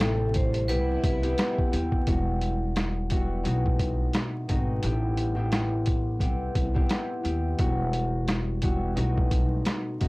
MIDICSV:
0, 0, Header, 1, 6, 480
1, 0, Start_track
1, 0, Key_signature, 1, "minor"
1, 0, Tempo, 689655
1, 1444, Time_signature, 4, 2, 24, 8
1, 7016, End_track
2, 0, Start_track
2, 0, Title_t, "Vibraphone"
2, 0, Program_c, 0, 11
2, 0, Note_on_c, 0, 69, 110
2, 220, Note_off_c, 0, 69, 0
2, 247, Note_on_c, 0, 72, 80
2, 461, Note_off_c, 0, 72, 0
2, 476, Note_on_c, 0, 71, 95
2, 695, Note_off_c, 0, 71, 0
2, 733, Note_on_c, 0, 71, 82
2, 1082, Note_off_c, 0, 71, 0
2, 7016, End_track
3, 0, Start_track
3, 0, Title_t, "Harp"
3, 0, Program_c, 1, 46
3, 0, Note_on_c, 1, 45, 99
3, 0, Note_on_c, 1, 57, 88
3, 0, Note_on_c, 1, 60, 80
3, 0, Note_on_c, 1, 64, 92
3, 0, Note_on_c, 1, 67, 101
3, 474, Note_on_c, 1, 59, 86
3, 475, Note_off_c, 1, 60, 0
3, 478, Note_on_c, 1, 60, 82
3, 479, Note_off_c, 1, 64, 0
3, 482, Note_off_c, 1, 67, 0
3, 482, Note_on_c, 1, 64, 82
3, 485, Note_on_c, 1, 67, 106
3, 518, Note_off_c, 1, 45, 0
3, 702, Note_off_c, 1, 59, 0
3, 704, Note_off_c, 1, 60, 0
3, 706, Note_off_c, 1, 64, 0
3, 708, Note_off_c, 1, 67, 0
3, 852, Note_on_c, 1, 59, 97
3, 855, Note_on_c, 1, 60, 91
3, 859, Note_on_c, 1, 64, 88
3, 862, Note_on_c, 1, 67, 101
3, 1175, Note_off_c, 1, 59, 0
3, 1176, Note_off_c, 1, 60, 0
3, 1178, Note_off_c, 1, 64, 0
3, 1180, Note_off_c, 1, 67, 0
3, 1193, Note_on_c, 1, 59, 77
3, 1197, Note_on_c, 1, 60, 71
3, 1201, Note_on_c, 1, 64, 73
3, 1204, Note_on_c, 1, 67, 84
3, 1422, Note_off_c, 1, 59, 0
3, 1424, Note_off_c, 1, 60, 0
3, 1425, Note_off_c, 1, 64, 0
3, 1427, Note_off_c, 1, 67, 0
3, 1442, Note_on_c, 1, 55, 93
3, 1445, Note_on_c, 1, 59, 84
3, 1449, Note_on_c, 1, 64, 82
3, 1453, Note_on_c, 1, 66, 97
3, 2152, Note_off_c, 1, 55, 0
3, 2160, Note_on_c, 1, 55, 87
3, 2161, Note_off_c, 1, 59, 0
3, 2164, Note_on_c, 1, 59, 80
3, 2165, Note_off_c, 1, 64, 0
3, 2167, Note_on_c, 1, 64, 91
3, 2168, Note_off_c, 1, 66, 0
3, 2171, Note_on_c, 1, 66, 101
3, 2203, Note_off_c, 1, 57, 0
3, 2389, Note_on_c, 1, 47, 96
3, 2393, Note_off_c, 1, 66, 0
3, 2395, Note_on_c, 1, 57, 85
3, 2395, Note_on_c, 1, 60, 81
3, 2400, Note_on_c, 1, 63, 76
3, 2402, Note_on_c, 1, 66, 101
3, 2404, Note_off_c, 1, 59, 0
3, 2406, Note_off_c, 1, 64, 0
3, 2438, Note_off_c, 1, 55, 0
3, 3113, Note_off_c, 1, 47, 0
3, 3119, Note_on_c, 1, 47, 70
3, 3123, Note_off_c, 1, 57, 0
3, 3123, Note_off_c, 1, 60, 0
3, 3126, Note_on_c, 1, 57, 72
3, 3126, Note_on_c, 1, 60, 66
3, 3128, Note_off_c, 1, 63, 0
3, 3130, Note_off_c, 1, 66, 0
3, 3131, Note_on_c, 1, 63, 72
3, 3133, Note_on_c, 1, 66, 80
3, 3347, Note_off_c, 1, 57, 0
3, 3349, Note_off_c, 1, 60, 0
3, 3350, Note_off_c, 1, 63, 0
3, 3352, Note_off_c, 1, 66, 0
3, 3365, Note_on_c, 1, 45, 88
3, 3370, Note_on_c, 1, 59, 85
3, 3372, Note_on_c, 1, 60, 83
3, 3375, Note_on_c, 1, 64, 96
3, 3377, Note_on_c, 1, 67, 100
3, 3398, Note_off_c, 1, 47, 0
3, 3710, Note_off_c, 1, 59, 0
3, 3711, Note_off_c, 1, 60, 0
3, 3713, Note_off_c, 1, 64, 0
3, 3714, Note_off_c, 1, 67, 0
3, 3715, Note_off_c, 1, 45, 0
3, 3722, Note_on_c, 1, 45, 103
3, 3727, Note_on_c, 1, 59, 85
3, 3727, Note_on_c, 1, 60, 83
3, 3733, Note_on_c, 1, 64, 91
3, 3734, Note_on_c, 1, 67, 95
3, 4310, Note_off_c, 1, 59, 0
3, 4313, Note_on_c, 1, 59, 86
3, 4314, Note_off_c, 1, 60, 0
3, 4317, Note_off_c, 1, 64, 0
3, 4317, Note_on_c, 1, 60, 81
3, 4320, Note_on_c, 1, 64, 80
3, 4321, Note_off_c, 1, 67, 0
3, 4323, Note_on_c, 1, 67, 105
3, 4358, Note_off_c, 1, 45, 0
3, 4542, Note_off_c, 1, 59, 0
3, 4543, Note_off_c, 1, 60, 0
3, 4545, Note_off_c, 1, 64, 0
3, 4547, Note_off_c, 1, 67, 0
3, 4692, Note_on_c, 1, 59, 94
3, 4696, Note_on_c, 1, 60, 86
3, 4699, Note_on_c, 1, 64, 92
3, 4703, Note_on_c, 1, 67, 101
3, 5014, Note_off_c, 1, 59, 0
3, 5017, Note_off_c, 1, 60, 0
3, 5018, Note_off_c, 1, 64, 0
3, 5020, Note_off_c, 1, 67, 0
3, 5033, Note_on_c, 1, 59, 74
3, 5037, Note_on_c, 1, 60, 68
3, 5040, Note_on_c, 1, 64, 73
3, 5044, Note_on_c, 1, 67, 83
3, 5262, Note_off_c, 1, 59, 0
3, 5264, Note_off_c, 1, 60, 0
3, 5265, Note_off_c, 1, 64, 0
3, 5267, Note_off_c, 1, 67, 0
3, 5281, Note_on_c, 1, 55, 94
3, 5285, Note_on_c, 1, 59, 82
3, 5289, Note_on_c, 1, 64, 84
3, 5292, Note_on_c, 1, 66, 103
3, 5992, Note_off_c, 1, 55, 0
3, 6001, Note_off_c, 1, 59, 0
3, 6001, Note_on_c, 1, 55, 89
3, 6004, Note_on_c, 1, 59, 81
3, 6005, Note_off_c, 1, 64, 0
3, 6008, Note_on_c, 1, 64, 94
3, 6009, Note_off_c, 1, 66, 0
3, 6011, Note_on_c, 1, 66, 98
3, 6228, Note_on_c, 1, 47, 97
3, 6233, Note_off_c, 1, 66, 0
3, 6236, Note_on_c, 1, 57, 86
3, 6236, Note_on_c, 1, 60, 83
3, 6237, Note_on_c, 1, 63, 81
3, 6242, Note_on_c, 1, 66, 102
3, 6244, Note_off_c, 1, 59, 0
3, 6246, Note_off_c, 1, 64, 0
3, 6278, Note_off_c, 1, 55, 0
3, 6954, Note_off_c, 1, 47, 0
3, 6961, Note_on_c, 1, 47, 73
3, 6964, Note_off_c, 1, 57, 0
3, 6965, Note_off_c, 1, 60, 0
3, 6966, Note_off_c, 1, 63, 0
3, 6967, Note_on_c, 1, 57, 70
3, 6967, Note_on_c, 1, 60, 67
3, 6969, Note_on_c, 1, 63, 70
3, 6972, Note_off_c, 1, 66, 0
3, 6975, Note_on_c, 1, 66, 80
3, 7016, Note_off_c, 1, 47, 0
3, 7016, Note_off_c, 1, 57, 0
3, 7016, Note_off_c, 1, 60, 0
3, 7016, Note_off_c, 1, 63, 0
3, 7016, Note_off_c, 1, 66, 0
3, 7016, End_track
4, 0, Start_track
4, 0, Title_t, "String section"
4, 0, Program_c, 2, 48
4, 0, Note_on_c, 2, 48, 88
4, 0, Note_on_c, 2, 55, 85
4, 0, Note_on_c, 2, 57, 74
4, 463, Note_off_c, 2, 57, 0
4, 485, Note_on_c, 2, 64, 89
4, 485, Note_on_c, 2, 71, 75
4, 1424, Note_off_c, 2, 48, 0
4, 1424, Note_off_c, 2, 55, 0
4, 1434, Note_off_c, 2, 71, 0
4, 1435, Note_off_c, 2, 64, 0
4, 7016, End_track
5, 0, Start_track
5, 0, Title_t, "Upright bass"
5, 0, Program_c, 3, 32
5, 0, Note_on_c, 3, 33, 112
5, 488, Note_off_c, 3, 33, 0
5, 488, Note_on_c, 3, 36, 105
5, 679, Note_off_c, 3, 36, 0
5, 723, Note_on_c, 3, 36, 101
5, 916, Note_off_c, 3, 36, 0
5, 1208, Note_on_c, 3, 39, 94
5, 1399, Note_off_c, 3, 39, 0
5, 1445, Note_on_c, 3, 28, 110
5, 2377, Note_off_c, 3, 28, 0
5, 2408, Note_on_c, 3, 35, 106
5, 2598, Note_off_c, 3, 35, 0
5, 2643, Note_on_c, 3, 35, 91
5, 2836, Note_off_c, 3, 35, 0
5, 3131, Note_on_c, 3, 32, 89
5, 3321, Note_off_c, 3, 32, 0
5, 3368, Note_on_c, 3, 33, 104
5, 4321, Note_off_c, 3, 33, 0
5, 4321, Note_on_c, 3, 36, 105
5, 4514, Note_off_c, 3, 36, 0
5, 4563, Note_on_c, 3, 36, 96
5, 4755, Note_off_c, 3, 36, 0
5, 5048, Note_on_c, 3, 39, 92
5, 5239, Note_off_c, 3, 39, 0
5, 5286, Note_on_c, 3, 28, 109
5, 6217, Note_off_c, 3, 28, 0
5, 6247, Note_on_c, 3, 35, 110
5, 6438, Note_off_c, 3, 35, 0
5, 6483, Note_on_c, 3, 35, 89
5, 6676, Note_off_c, 3, 35, 0
5, 6972, Note_on_c, 3, 32, 92
5, 7016, Note_off_c, 3, 32, 0
5, 7016, End_track
6, 0, Start_track
6, 0, Title_t, "Drums"
6, 1, Note_on_c, 9, 42, 89
6, 7, Note_on_c, 9, 38, 115
6, 10, Note_on_c, 9, 37, 96
6, 70, Note_off_c, 9, 42, 0
6, 76, Note_off_c, 9, 38, 0
6, 80, Note_off_c, 9, 37, 0
6, 238, Note_on_c, 9, 42, 75
6, 249, Note_on_c, 9, 36, 105
6, 307, Note_off_c, 9, 42, 0
6, 319, Note_off_c, 9, 36, 0
6, 377, Note_on_c, 9, 42, 60
6, 446, Note_off_c, 9, 42, 0
6, 482, Note_on_c, 9, 42, 96
6, 552, Note_off_c, 9, 42, 0
6, 721, Note_on_c, 9, 36, 101
6, 721, Note_on_c, 9, 42, 79
6, 790, Note_off_c, 9, 36, 0
6, 791, Note_off_c, 9, 42, 0
6, 858, Note_on_c, 9, 42, 55
6, 928, Note_off_c, 9, 42, 0
6, 959, Note_on_c, 9, 42, 90
6, 968, Note_on_c, 9, 38, 119
6, 971, Note_on_c, 9, 37, 97
6, 1029, Note_off_c, 9, 42, 0
6, 1037, Note_off_c, 9, 38, 0
6, 1041, Note_off_c, 9, 37, 0
6, 1103, Note_on_c, 9, 36, 99
6, 1172, Note_off_c, 9, 36, 0
6, 1205, Note_on_c, 9, 42, 91
6, 1274, Note_off_c, 9, 42, 0
6, 1337, Note_on_c, 9, 36, 95
6, 1407, Note_off_c, 9, 36, 0
6, 1440, Note_on_c, 9, 42, 83
6, 1444, Note_on_c, 9, 36, 120
6, 1509, Note_off_c, 9, 42, 0
6, 1513, Note_off_c, 9, 36, 0
6, 1681, Note_on_c, 9, 42, 65
6, 1750, Note_off_c, 9, 42, 0
6, 1920, Note_on_c, 9, 42, 87
6, 1926, Note_on_c, 9, 38, 114
6, 1930, Note_on_c, 9, 37, 89
6, 1990, Note_off_c, 9, 42, 0
6, 1996, Note_off_c, 9, 38, 0
6, 1999, Note_off_c, 9, 37, 0
6, 2157, Note_on_c, 9, 42, 74
6, 2169, Note_on_c, 9, 36, 105
6, 2227, Note_off_c, 9, 42, 0
6, 2239, Note_off_c, 9, 36, 0
6, 2401, Note_on_c, 9, 42, 93
6, 2471, Note_off_c, 9, 42, 0
6, 2546, Note_on_c, 9, 36, 101
6, 2615, Note_off_c, 9, 36, 0
6, 2640, Note_on_c, 9, 36, 99
6, 2641, Note_on_c, 9, 42, 76
6, 2710, Note_off_c, 9, 36, 0
6, 2710, Note_off_c, 9, 42, 0
6, 2878, Note_on_c, 9, 42, 91
6, 2886, Note_on_c, 9, 38, 116
6, 2890, Note_on_c, 9, 37, 94
6, 2947, Note_off_c, 9, 42, 0
6, 2956, Note_off_c, 9, 38, 0
6, 2959, Note_off_c, 9, 37, 0
6, 3125, Note_on_c, 9, 42, 86
6, 3129, Note_on_c, 9, 36, 100
6, 3194, Note_off_c, 9, 42, 0
6, 3199, Note_off_c, 9, 36, 0
6, 3359, Note_on_c, 9, 42, 84
6, 3429, Note_off_c, 9, 42, 0
6, 3601, Note_on_c, 9, 42, 65
6, 3670, Note_off_c, 9, 42, 0
6, 3840, Note_on_c, 9, 42, 86
6, 3846, Note_on_c, 9, 38, 117
6, 3850, Note_on_c, 9, 37, 93
6, 3910, Note_off_c, 9, 42, 0
6, 3916, Note_off_c, 9, 38, 0
6, 3919, Note_off_c, 9, 37, 0
6, 4077, Note_on_c, 9, 42, 75
6, 4089, Note_on_c, 9, 36, 104
6, 4147, Note_off_c, 9, 42, 0
6, 4159, Note_off_c, 9, 36, 0
6, 4319, Note_on_c, 9, 36, 95
6, 4321, Note_on_c, 9, 42, 94
6, 4388, Note_off_c, 9, 36, 0
6, 4391, Note_off_c, 9, 42, 0
6, 4561, Note_on_c, 9, 36, 95
6, 4561, Note_on_c, 9, 42, 76
6, 4630, Note_off_c, 9, 36, 0
6, 4631, Note_off_c, 9, 42, 0
6, 4707, Note_on_c, 9, 36, 103
6, 4776, Note_off_c, 9, 36, 0
6, 4798, Note_on_c, 9, 42, 90
6, 4807, Note_on_c, 9, 38, 113
6, 4810, Note_on_c, 9, 37, 93
6, 4867, Note_off_c, 9, 42, 0
6, 4876, Note_off_c, 9, 38, 0
6, 4880, Note_off_c, 9, 37, 0
6, 5045, Note_on_c, 9, 42, 86
6, 5114, Note_off_c, 9, 42, 0
6, 5280, Note_on_c, 9, 42, 82
6, 5284, Note_on_c, 9, 36, 123
6, 5350, Note_off_c, 9, 42, 0
6, 5353, Note_off_c, 9, 36, 0
6, 5521, Note_on_c, 9, 42, 69
6, 5590, Note_off_c, 9, 42, 0
6, 5761, Note_on_c, 9, 42, 85
6, 5767, Note_on_c, 9, 38, 119
6, 5770, Note_on_c, 9, 37, 92
6, 5830, Note_off_c, 9, 42, 0
6, 5836, Note_off_c, 9, 38, 0
6, 5840, Note_off_c, 9, 37, 0
6, 5998, Note_on_c, 9, 42, 76
6, 6009, Note_on_c, 9, 36, 106
6, 6068, Note_off_c, 9, 42, 0
6, 6079, Note_off_c, 9, 36, 0
6, 6242, Note_on_c, 9, 42, 96
6, 6311, Note_off_c, 9, 42, 0
6, 6386, Note_on_c, 9, 36, 97
6, 6456, Note_off_c, 9, 36, 0
6, 6481, Note_on_c, 9, 36, 97
6, 6482, Note_on_c, 9, 42, 79
6, 6550, Note_off_c, 9, 36, 0
6, 6551, Note_off_c, 9, 42, 0
6, 6719, Note_on_c, 9, 42, 93
6, 6727, Note_on_c, 9, 38, 111
6, 6731, Note_on_c, 9, 37, 92
6, 6788, Note_off_c, 9, 42, 0
6, 6797, Note_off_c, 9, 38, 0
6, 6800, Note_off_c, 9, 37, 0
6, 6965, Note_on_c, 9, 42, 89
6, 6970, Note_on_c, 9, 36, 101
6, 7016, Note_off_c, 9, 36, 0
6, 7016, Note_off_c, 9, 42, 0
6, 7016, End_track
0, 0, End_of_file